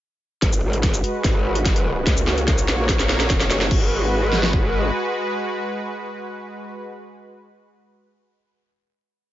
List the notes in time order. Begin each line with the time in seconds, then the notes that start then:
0.42 G#1 G#3 F#4 B4, kick, snare, closed hi-hat
0.53 shaker
0.63 G#1
0.73 closed hi-hat
0.83 kick, snare, closed hi-hat
0.94 shaker
1.04 closed hi-hat
1.24 G#1, kick, snare, closed hi-hat, shaker
1.55 closed hi-hat
1.65 kick, snare, closed hi-hat
1.76 closed hi-hat
2.07 C#2 A#3 F#4 C#5, kick, snare, closed hi-hat
2.17 shaker
2.27 snare
2.38 closed hi-hat
2.48 C2, kick, snare, closed hi-hat
2.58 shaker
2.68 A#1, snare, closed hi-hat
2.89 kick, snare, closed hi-hat
2.99 snare, shaker
3.09 snare
3.20 snare, closed hi-hat
3.30 E1, kick, snare, closed hi-hat
3.40 snare, closed hi-hat
3.50 F#1, snare, shaker
3.61 snare
3.71 G#1 G#3 F#4 B4, kick, crash
4.33 snare
4.43 snare
4.53 kick